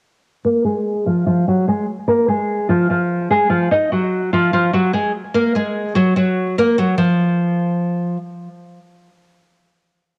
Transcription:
0.45 A#3 A#4
0.64 G#3 G#4
1.06 F3 F4
1.26 F3 F4
1.48 F#3 F#4
1.68 G#3 G#4
2.08 A#3 A#4
2.28 G#3 G#4
2.69 F3 F4
2.90 F3 F4
3.31 G#3 G#4
3.50 F3 F4
3.71 D#4 D#5
3.92 F#3 F#4
4.33 F3 F4
4.53 F3 F4
4.73 F#3 F#4
4.93 G#3 G#4
5.34 A#3 A#4
5.55 G#3 G#4
5.95 F#3 F#4
6.16 F#3 F#4
6.58 A#3 A#4
6.78 F#3 F#4
6.98 F3

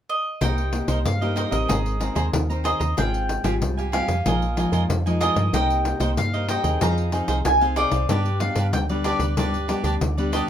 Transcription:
0.10 D#5
0.41 C2 C3 A#3 D#4 G4 A#4 C5 D#5 G5, pandeiro
0.58 pandeiro
0.72 A#3 D#4 G4, pandeiro
0.88 C2 D#4 A#4 C5 D#5, pandeiro
1.05 G2 F5, pandeiro
1.21 A#3 D#4 G4 A#4 C5 D#5, pandeiro
1.36 D#4 A#4 C5 D#5, pandeiro
1.51 A1 C4 D#4 A#4 C5 D#5, pandeiro
1.68 G#1 G#3 G#4 C5 A#5, pandeiro
1.86 pandeiro
2.00 C4 D#4 G#4 A#4 C5 A#5, pandeiro
2.15 D#2 G#4 C5 A#5, pandeiro
2.33 D#2 D#3, pandeiro
2.50 C4 D#4 A#4 C5 A#5, pandeiro
2.64 G#4 C5 D#5 A#5, pandeiro
2.80 D#2 C5 A#5, pandeiro
2.97 G#1 G#2 C4 F4 G#4 F5 G5, pandeiro
3.14 pandeiro
3.29 pandeiro
3.44 G#1 G3 C4 F4 G4 G#4 F5 G#5, pandeiro
3.61 C2 G#2, pandeiro
3.77 G4 F5 G#5, pandeiro
3.92 G3 C4 F4 G4 G#4 F5 G#5, pandeiro
4.08 F2 G4 F5 G#5, pandeiro
4.26 A#1 A#2 F3 G#3 D#4 F4 A#4 D#5 G#5, pandeiro
4.42 pandeiro
4.56 F3 G#3 D#4 F4 A#4 D#5 G#5, pandeiro
4.72 F2 F4 A#4 D#5 G#5, pandeiro
4.89 F2, pandeiro
5.06 F3 G#3 D#4 A#4 D#5 G#5, pandeiro
5.20 F4 A#4 D#5 G#5, pandeiro
5.35 G2 A#4 D#5 G#5, pandeiro
5.53 C2 C3 A#3 D#4 G4 A#4 C5 D#5 G5, pandeiro
5.70 pandeiro
5.85 pandeiro
6.00 C2 A#3 D#4 G4 A#4 C5 D#5, pandeiro
6.17 G2 F5, pandeiro
6.33 A#4 C5 D#5, pandeiro
6.48 A#3 D#4 G4 A#4 C5 D#5 G5, pandeiro
6.64 D#2 C4 D#4 G#4 A#4 C5 D#5, pandeiro
6.81 F2 F3 D#4 G#4 C5 F5 A#5, pandeiro
6.98 pandeiro
7.12 C4 D#4 G#4 C5 F5, pandeiro
7.28 C2 D#4 G#4 C5 F5, pandeiro
7.45 C2 C3 G#5, pandeiro
7.61 C4 D#4 G#4 C5 F5, pandeiro
7.76 D#4 G#4 C5 D5 F5, pandeiro
7.91 C2 G#4 C5 F5, pandeiro
8.09 G2 G3 B3 D4 G4 B4 D5, pandeiro
8.26 pandeiro
8.40 G3 B3 D4 F5, pandeiro
8.56 G2 D4 G4 B4 D5, pandeiro
8.73 D2 D3 G5, pandeiro
8.89 G3 B3 D4 G4 B4 D5, pandeiro
9.04 D4 G4 B4 D5, pandeiro
9.19 D2 G4 B4 D5, pandeiro
9.37 G2 G3 B3 D4 G4 B4 D5, pandeiro
9.54 pandeiro
9.68 G3 B3 D4 G4 B4 D5, pandeiro
9.84 D2 D4 G4 B4 D5, pandeiro
10.01 D2 D3, pandeiro
10.18 G3 B3 D4 G4 B4 D5, pandeiro
10.32 D4 G4 B4 D5 D#5, pandeiro

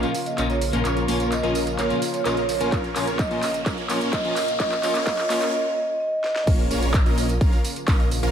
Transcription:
Already playing: C#3 F3 A#3 F4, riser
0.02 A#2 F3 A#3 C#4 F4 F5, closed hi-hat, tambourine
0.14 F5, open hi-hat, tambourine
0.26 D#5, closed hi-hat, tambourine
0.37 A#1 A#2 F3 A#3 C#4 F4 A#4 D#5, clap, closed hi-hat, tambourine
0.50 C#5, closed hi-hat, tambourine
0.61 open hi-hat, tambourine
0.72 A#1 A#2 F3 A#3 C#4 F4 A#4 F5, closed hi-hat, tambourine
0.85 A#1 A#3 C#4 F4 A#4 C#5, clap, closed hi-hat, tambourine
0.97 closed hi-hat, tambourine
1.08 A#1 A#2 F3 A#3 C#4 F4 A#4 C#5, open hi-hat, tambourine
1.20 closed hi-hat, tambourine
1.32 D#5, clap, closed hi-hat, tambourine
1.43 A#1 A#2 F3 A#3 C#4 F4 A#4 D#5, closed hi-hat, tambourine
1.55 open hi-hat, tambourine
1.67 closed hi-hat, tambourine
1.78 A#1 A#3 C#4 F4 A#4 C#5 F5, clap, closed hi-hat, tambourine
1.90 A#2 F3 A#3 C#4 F4, closed hi-hat, tambourine
2.02 open hi-hat, tambourine
2.14 C#5, closed hi-hat, tambourine
2.25 A#1 A#2 F3 A#3 C#4 F4 A#4 D#5, clap, closed hi-hat, tambourine
2.37 closed hi-hat, tambourine
2.49 open hi-hat, tambourine
2.60 A#1 A#2 F3 A#3 C#4 F4 A#4 F5, closed hi-hat, tambourine
2.72 A#1 A#3 C#4 F4 A#4 C#5, kick, clap, closed hi-hat, tambourine
2.84 closed hi-hat, tambourine
2.95 A#1 A#2 F3 A#3 C#4 F4 A#4 C#5, clap, open hi-hat, tambourine
3.07 closed hi-hat, tambourine
3.19 D#5, kick, clap, closed hi-hat, tambourine
3.30 A#1 A#2 F3 A#3 C#4 F4 A#4 D#5, closed hi-hat, tambourine
3.43 clap, open hi-hat, tambourine
3.54 closed hi-hat, tambourine
3.66 A#1 A#3 C#4 F4 A#4 C#5, kick, clap, closed hi-hat, tambourine
3.78 closed hi-hat, tambourine
3.89 A#1 A#2 F3 A#3 C#4 F4 A#4 C#5, clap, open hi-hat, tambourine
4.01 closed hi-hat, tambourine
4.13 D#5, kick, clap, closed hi-hat, tambourine
4.24 A#1 A#2 F3 A#3 C#4 F4 A#4 D#5, closed hi-hat, tambourine
4.36 clap, open hi-hat, tambourine
4.48 closed hi-hat, tambourine
4.60 A#1 A#3 C#4 F4 A#4 C#5 D#5, kick, clap, closed hi-hat, tambourine
4.72 clap, closed hi-hat, tambourine
4.83 A#1 A#2 F3 A#3 C#4 F4 A#4 C#5, clap, open hi-hat, tambourine
4.95 clap, closed hi-hat, tambourine
5.07 A#1 A#3 C#4 F4 A#4 C#5 D#5, kick, clap, closed hi-hat, tambourine
5.19 clap, closed hi-hat, tambourine
5.29 A#1 A#2 F3 A#3 C#4 F4 A#4 C#5, clap, open hi-hat, tambourine
5.42 clap, closed hi-hat, tambourine
5.53 D#5
5.77 D#5
6.00 D#5
6.24 D#5, snare
6.36 snare
6.47 A#1 C#3 F3 A#3 C#4 F4 A#4 C#5, kick, closed hi-hat, crash, tambourine, impact
6.59 closed hi-hat, tambourine
6.71 A#1 A#3 C#4 F4 A#4 C#5, open hi-hat, tambourine
6.83 closed hi-hat, tambourine
6.94 kick, clap, closed hi-hat, tambourine
7.06 A#1 A#3 C#4 F4 A#4 D#5, closed hi-hat, tambourine
7.18 open hi-hat, tambourine
7.29 closed hi-hat, tambourine
7.41 A#1 A#3 C#4 F4 A#4 F5, kick, closed hi-hat, tambourine
7.53 closed hi-hat, tambourine
7.65 open hi-hat, tambourine
7.76 closed hi-hat, tambourine
7.88 A#1 A#3 C#4 F4 A#4 D#5, kick, clap, closed hi-hat, tambourine
8.00 closed hi-hat, tambourine
8.11 open hi-hat, tambourine
8.23 A#1 A#3 C#4 F4 A#4 F5, closed hi-hat, tambourine

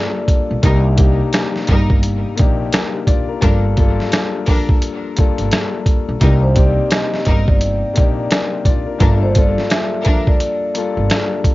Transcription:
Already playing: G2 A#3 D4 F4 A4 D5
0.28 kick, closed hi-hat
0.51 A#1
0.62 C2 C3 G3 A#3 D4 D#4 G4 A#4, kick, closed hi-hat
0.96 C3 A#3 D4 D#4 G4, kick, closed hi-hat
1.33 cross-stick, snare, closed hi-hat
1.56 snare
1.67 G1 G3 D#4 A#4, kick, closed hi-hat
1.90 kick
2.03 closed hi-hat
2.35 C3 A#3 D4 D#4 G4, closed hi-hat
2.39 A#1, kick
2.72 D4 A#4, cross-stick, snare, closed hi-hat
3.07 A#1 F4 D5, kick, closed hi-hat
3.28 D4 A#4
3.41 G1 G2 F3 A#3 D4 F4 A4 A#4, kick, closed hi-hat
3.76 G2 A#3 D4 F4 A4, kick, closed hi-hat
4.00 snare
4.12 cross-stick, snare, closed hi-hat
4.46 F3 D4 A#4, kick, open hi-hat
4.69 kick
4.82 closed hi-hat
5.16 G2 A#3 D4 F4 A4, kick, closed hi-hat
5.38 G1, closed hi-hat
5.51 cross-stick, snare, closed hi-hat
5.86 kick, closed hi-hat
6.09 A#1
6.20 C2 C3 G3 A#3 D4 D#4 G4 A#4, kick, closed hi-hat
6.43 C5
6.54 C3 A#3 C4 D#4 G4 D5, kick, closed hi-hat
6.91 cross-stick, snare, closed hi-hat
7.14 snare
7.25 G1 G3 D#4 A#4, kick, closed hi-hat
7.47 D5, kick
7.61 closed hi-hat
7.93 C3 A#3 D4 D#4 G4, closed hi-hat
7.98 A#1, kick
8.31 D4 A#4, cross-stick, snare, closed hi-hat
8.65 A#1 F4 D5, kick, closed hi-hat
8.86 D4 A#4
8.99 G1 G2 F3 A#3 D4 F4 A4 A#4, kick, closed hi-hat
9.23 C5
9.34 G2 A#3 D4 F4 A4 D5, kick, closed hi-hat
9.58 snare
9.70 E5, cross-stick, snare, closed hi-hat
10.03 F3 D4 A#4, kick, closed hi-hat
10.27 D5, kick
10.40 closed hi-hat
10.74 G2 A#3 D4 F4 A4, closed hi-hat
10.97 G1
11.10 cross-stick, snare, closed hi-hat
11.44 kick, closed hi-hat

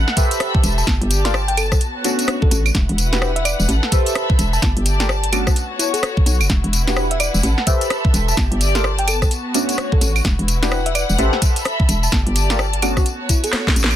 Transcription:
Already playing: E4 A4 B4 F#5
0.00 E5
0.08 snare
0.17 G4 A4 B4 C5 E5, kick, closed hi-hat, tambourine
0.27 B5
0.31 closed hi-hat, tambourine
0.40 cross-stick, closed hi-hat, tambourine
0.55 kick
0.64 E1, closed hi-hat, tambourine
0.78 A5, tambourine
0.87 G1 G4 A5, kick, snare, closed hi-hat
1.01 G1, closed hi-hat
1.10 D5, closed hi-hat, tambourine
1.21 A5 C6
1.25 F4 G4 A4 A#4 D5, snare, closed hi-hat, tambourine
1.34 cross-stick, tambourine
1.48 G5, closed hi-hat
1.57 B3 A4, closed hi-hat, tambourine, claves
1.66 F#4
1.72 B1 A4, kick, cross-stick, tambourine
1.81 closed hi-hat, tambourine
1.92 C#5
2.04 A3 B3 C#4 D4 F#4, closed hi-hat, tambourine
2.19 closed hi-hat, tambourine
2.28 cross-stick, closed hi-hat
2.42 A4, kick
2.51 A1 A4, closed hi-hat, tambourine
2.66 tambourine, claves
2.75 E1 E4, kick, snare, closed hi-hat
2.85 F#5
2.89 E1, closed hi-hat
2.97 B4, closed hi-hat, tambourine
3.12 D4 E4 F#4 G4 B4, snare, closed hi-hat, tambourine
3.22 cross-stick, tambourine
3.36 E5, closed hi-hat
3.45 D5, closed hi-hat, tambourine, claves
3.60 E1, tambourine
3.68 A1 A4, closed hi-hat, tambourine
3.83 snare
3.92 G4 A4 B4 C5 E5, kick, closed hi-hat, tambourine
4.06 closed hi-hat, tambourine
4.12 B5, cross-stick, closed hi-hat
4.30 kick
4.39 E1, closed hi-hat, tambourine
4.53 A5, tambourine
4.62 G1 G4, kick, snare, closed hi-hat, tambourine
4.77 G1, closed hi-hat
4.82 D5 A5
4.86 closed hi-hat, tambourine
5.00 F4 G4 A4 A#4 D5, snare, closed hi-hat, tambourine
5.09 cross-stick, tambourine
5.24 closed hi-hat
5.32 A3 B3 C#4 D4 F#4, closed hi-hat, tambourine, claves
5.47 B1 F#4, kick, cross-stick, tambourine
5.56 closed hi-hat, tambourine
5.72 C#5
5.79 E4, closed hi-hat, tambourine
5.94 A4, closed hi-hat, tambourine
6.03 cross-stick, closed hi-hat
6.17 kick
6.26 B1, closed hi-hat, tambourine
6.41 F#1, tambourine, claves
6.50 E1 E4, kick, snare, closed hi-hat
6.64 E1, closed hi-hat
6.73 closed hi-hat, tambourine
6.79 F#5
6.85 D4 E4 F#4 G4 B4, snare, closed hi-hat, tambourine
6.97 cross-stick, tambourine
7.11 E5, closed hi-hat
7.20 D5, closed hi-hat, tambourine, claves
7.34 E1, tambourine
7.43 A1 A4, closed hi-hat, tambourine
7.58 snare
7.66 G4 A4 B4 C5 E5 B5, kick, closed hi-hat, tambourine
7.79 E5, closed hi-hat, tambourine
7.90 cross-stick, closed hi-hat, tambourine
8.05 kick
8.14 E1, closed hi-hat, tambourine
8.28 A5, tambourine
8.37 G1 G4, kick, snare, closed hi-hat
8.52 G1, closed hi-hat
8.57 D5
8.61 closed hi-hat, tambourine
8.71 F4 G4 A#4 D5 A5
8.75 A4 C6, snare, closed hi-hat, tambourine
8.84 C6, cross-stick, tambourine
8.99 G5, closed hi-hat
9.08 B3 A4, closed hi-hat, tambourine, claves
9.22 B1 F#4 A4, kick, cross-stick, tambourine
9.31 closed hi-hat, tambourine
9.54 A3 B3 C#4 D4 F#4, closed hi-hat, tambourine
9.62 C#5
9.69 closed hi-hat, tambourine
9.78 cross-stick, closed hi-hat, tambourine
9.92 A4, kick
10.01 A1 A4, closed hi-hat, tambourine
10.16 tambourine, claves
10.25 E1 E4, kick, snare, closed hi-hat, tambourine
10.38 E1 B4, closed hi-hat
10.48 closed hi-hat, tambourine
10.63 D4 E4 F#4 G4 B4, snare, closed hi-hat, tambourine
10.68 F#5, cross-stick, tambourine
10.86 E5, closed hi-hat
10.95 D5, closed hi-hat, tambourine, claves
11.09 E1, tambourine
11.18 A1 G4 A4 B4 C5 E5, closed hi-hat, tambourine
11.32 E5, snare
11.42 kick, closed hi-hat, tambourine
11.56 closed hi-hat, tambourine
11.62 B5, cross-stick, closed hi-hat
11.80 kick
11.89 E1, closed hi-hat, tambourine
12.03 A5, tambourine
12.12 G1 G4, kick, snare, closed hi-hat
12.23 G1 D5, closed hi-hat
12.32 A5, closed hi-hat, tambourine
12.50 F4 G4 A4 A#4 D5, snare, closed hi-hat, tambourine
12.59 cross-stick, tambourine
12.73 closed hi-hat
12.82 A3 B3 C#4 D4 F#4, closed hi-hat, tambourine, claves
12.97 B1 F#4, kick, cross-stick, tambourine
13.02 F#4
13.06 closed hi-hat, tambourine
13.17 C#5
13.29 E4, kick, closed hi-hat, tambourine
13.44 A4, closed hi-hat, tambourine
13.53 cross-stick, snare, closed hi-hat
13.67 kick, snare
13.76 A1, closed hi-hat, tambourine
13.84 snare
13.91 tambourine, claves

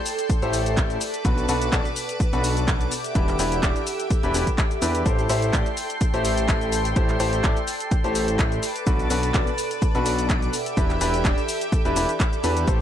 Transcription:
Already playing: A4 D5 G5 C6
0.06 open hi-hat, cabasa
0.19 closed hi-hat, cabasa
0.30 kick, closed hi-hat, cabasa
0.42 A1 A3 E4 G4 A4 C5, closed hi-hat, cabasa
0.53 open hi-hat, cabasa
0.66 closed hi-hat, cabasa
0.77 kick, clap, closed hi-hat, cabasa
0.90 closed hi-hat, cabasa
1.01 B4 A5 D6, open hi-hat, cabasa
1.14 closed hi-hat, cabasa
1.25 B1 B2 D4 F#4 A4 B4, kick, closed hi-hat, cabasa
1.38 closed hi-hat, cabasa
1.49 B1 B2 D4 F#4 A4 B4, open hi-hat, cabasa
1.55 F#5
1.62 closed hi-hat, cabasa
1.72 B1 B2 D4 F#4 A4 D5, kick, clap, closed hi-hat, cabasa
1.85 closed hi-hat, cabasa
1.96 open hi-hat, cabasa
2.09 closed hi-hat, cabasa
2.20 kick, closed hi-hat, cabasa
2.33 B1 B2 D4 F#4 A4 B4, closed hi-hat, cabasa
2.44 open hi-hat, cabasa
2.57 closed hi-hat, cabasa
2.68 kick, clap, closed hi-hat, cabasa
2.81 closed hi-hat, cabasa
2.92 G4 A4 E5, open hi-hat, cabasa
3.04 closed hi-hat, cabasa
3.15 E1 E3 D4 E4 G4 B4 D5, kick, closed hi-hat, cabasa
3.28 clap, closed hi-hat, cabasa
3.39 E1 E3 D4 E4 G4 B4, open hi-hat, cabasa
3.52 closed hi-hat, cabasa
3.63 E1 E3 D4 E4 G4 D5, kick, clap, closed hi-hat, cabasa
3.76 closed hi-hat, cabasa
3.87 open hi-hat, cabasa
4.00 closed hi-hat, cabasa
4.10 kick, closed hi-hat, cabasa
4.23 E1 E3 D4 E4 G4 B4, closed hi-hat, cabasa
4.34 E1 E3 D4 E4 G4 B4, open hi-hat, cabasa
4.47 kick, closed hi-hat, cabasa
4.58 kick, clap, closed hi-hat, cabasa
4.71 closed hi-hat, cabasa
4.82 E2 D4 E4 G4 B4, open hi-hat, cabasa
4.95 closed hi-hat, cabasa
5.06 A1 A3 E4 G4 A4 C5 G5 C6, kick, closed hi-hat, cabasa
5.19 closed hi-hat, cabasa
5.29 A1 A3 E4 G4 A4 C5, open hi-hat, cabasa
5.42 closed hi-hat, cabasa
5.53 A1 A3 E4 G4 A4 D5, kick, clap, closed hi-hat, cabasa
5.66 closed hi-hat, cabasa
5.77 open hi-hat, cabasa
5.87 G5, closed hi-hat, cabasa
6.01 kick, closed hi-hat, cabasa
6.14 A1 A3 E4 G4 A4 C5, closed hi-hat, cabasa
6.25 open hi-hat, cabasa
6.38 closed hi-hat, cabasa
6.48 kick, clap, closed hi-hat, cabasa
6.61 closed hi-hat, cabasa
6.72 open hi-hat, cabasa
6.85 closed hi-hat, cabasa
6.96 A1 A3 E4 G4 A4 C5, kick, closed hi-hat, cabasa
7.09 clap, closed hi-hat, cabasa
7.20 A1 A3 E4 G4 A4 C5, open hi-hat, cabasa
7.33 closed hi-hat, cabasa
7.44 A1 A3 E4 G4 A4 D5, kick, clap, closed hi-hat, cabasa
7.57 closed hi-hat, cabasa
7.68 open hi-hat, cabasa
7.80 closed hi-hat, cabasa
7.91 kick, closed hi-hat, cabasa
8.04 A1 A3 E4 G4 A4 C5, closed hi-hat, cabasa
8.15 open hi-hat, cabasa
8.28 closed hi-hat, cabasa
8.39 kick, clap, closed hi-hat, cabasa
8.52 closed hi-hat, cabasa
8.63 B4 A5 D6, open hi-hat, cabasa
8.76 closed hi-hat, cabasa
8.87 B1 B2 D4 F#4 A4 B4, kick, closed hi-hat, cabasa
8.99 closed hi-hat, cabasa
9.10 B1 B2 D4 F#4 A4 B4, open hi-hat, cabasa
9.23 closed hi-hat, cabasa
9.34 B1 B2 D4 F#4 A4 D5, kick, clap, closed hi-hat, cabasa
9.47 closed hi-hat, cabasa
9.58 open hi-hat, cabasa
9.71 closed hi-hat, cabasa
9.82 kick, closed hi-hat, cabasa
9.95 B1 B2 D4 F#4 A4 B4, closed hi-hat, cabasa
10.06 open hi-hat, cabasa
10.19 closed hi-hat, cabasa
10.30 kick, clap, closed hi-hat, cabasa
10.42 closed hi-hat, cabasa
10.53 G4 E5, open hi-hat, cabasa
10.66 closed hi-hat, cabasa
10.77 E1 E3 D4 E4 G4 B4, kick, closed hi-hat, cabasa
10.90 clap, closed hi-hat, cabasa
11.01 E1 E3 D4 E4 G4 B4, open hi-hat, cabasa
11.08 G4
11.14 closed hi-hat, cabasa
11.25 E1 E3 D4 E4 G4 D5, kick, clap, closed hi-hat, cabasa
11.38 closed hi-hat, cabasa
11.49 open hi-hat, cabasa
11.61 closed hi-hat, cabasa
11.72 kick, closed hi-hat, cabasa
11.85 E1 E3 D4 E4 G4 B4, closed hi-hat, cabasa
11.96 E1 E3 D4 E4 G4 B4, open hi-hat, cabasa
12.09 closed hi-hat, cabasa
12.20 kick, clap, closed hi-hat, cabasa
12.33 closed hi-hat, cabasa
12.44 E2 D4 E4 G4 B4, open hi-hat, cabasa
12.57 closed hi-hat, cabasa
12.67 A1 A3 E4 G4 A4 C5 G5 C6, kick, closed hi-hat, cabasa

